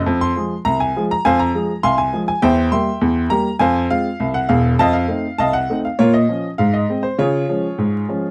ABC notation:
X:1
M:2/4
L:1/16
Q:1/4=101
K:Fphr
V:1 name="Upright piano"
z c'3 b a2 b | [cfa] b3 [fac'] a2 a | [c=e=g]2 [egc']4 b2 | [cfa]2 f3 g f2 |
[ef=a] f3 [efa] g2 f | [FBd] e3 f e2 c | [FAd]8 |]
V:2 name="Upright piano" clef=bass
F,,2 [F,A,A]2 C,,2 [F,A,A]2 | F,,2 [F,A,A]2 C,,2 [F,A,A]2 | =E,,2 [=G,B,=G]2 E,,2 [G,B,G]2 | F,,2 [A,CF]2 C,,2 [_F,,,_F,,]2 |
F,,2 [=A,CE]2 C,,2 [A,CE]2 | B,,2 [F,D]2 A,,2 [A,C]2 | D,2 [F,A,D]2 A,,2 [F,A,D]2 |]